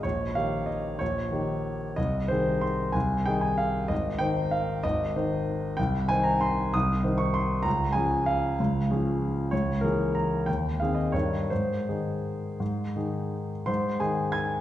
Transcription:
<<
  \new Staff \with { instrumentName = "Grand piano" } { \time 3/4 \key aes \major \tempo 4 = 187 des''4 f''4 ees''4 | des''2. | ees''4 c''4 c'''4 | aes''4 g''8 aes''8 f''4 |
ees''4 g''4 f''4 | ees''2. | g''4 aes''8 bes''8 c'''4 | ees'''4. des'''8 c'''4 |
bes''4 aes''4 f''4~ | f''2. | des''4 bes'4 bes''4 | g''4 f''8 ees''8 des''4 |
c''2.~ | c''2~ c''8 r8 | <c'' c'''>4 <aes' aes''>4 <aes'' aes'''>4 | }
  \new Staff \with { instrumentName = "Grand piano" } { \clef bass \time 3/4 \key aes \major bes,,4 <ees ees' g'>2 | bes,,4 <ees ees' g'>2 | c,4 <ees ees' aes'>2 | c,4 <ees ees' aes'>2 |
aes,,4 <ees ees' c''>2 | aes,,4 <ees ees' c''>2 | c,4 <ees ees' c''>2 | c,4 <ees ees' c''>2 |
des,4 <f des' aes'>2 | des,4 <f des' aes'>2 | des,4 <fes bes aes'>2 | ees,4 <ees c' aes'>4 <g, ees ees' bes'>4 |
aes,4 <ees ees' aes'>2 | aes,4 <ees ees' aes'>2 | aes,4 <ees ees'>2 | }
>>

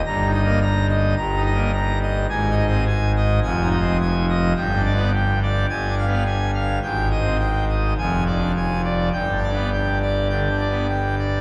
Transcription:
<<
  \new Staff \with { instrumentName = "Pipe organ" } { \time 4/4 \key ees \major \tempo 4 = 106 bes''8 ees''8 bes''8 ees''8 bes''8 ees''8 bes''8 ees''8 | \key g \phrygian aes''8 ees''8 aes''8 ees''8 aes''8 ees''8 aes''8 ees''8 | g''8 d''8 g''8 d''8 aes''8 f''8 aes''8 f''8 | g''8 ees''8 g''8 ees''8 aes''8 d''8 aes''8 d''8 |
g''8 d''8 g''8 d''8 g''8 d''8 g''8 d''8 | }
  \new Staff \with { instrumentName = "Pipe organ" } { \clef bass \time 4/4 \key ees \major << { \tuplet 3/2 { g,8 ees'8 bes8 } r4 \tuplet 3/2 { g,8 ees'8 bes8 } r4 | \key g \phrygian \tuplet 3/2 { aes,8 ees'8 c'8 } r4 \tuplet 3/2 { f,8 ees'8 c'8 } r4 | \tuplet 3/2 { g,8 d'8 b8 } r4 \tuplet 3/2 { g,8 d'8 b8 } r4 | \tuplet 3/2 { aes,4 c'8 } r4 \tuplet 3/2 { f,4 d'8 } r4 |
\tuplet 3/2 { g,8 d'8 b8 } r4 \tuplet 3/2 { d8 d'8 b8 } r4 | } \\ { g,,2 g,,2 | aes,,2 f,,2 | g,,2 g,,2 | aes,,2 f,,2 |
g,,1 | } >> }
>>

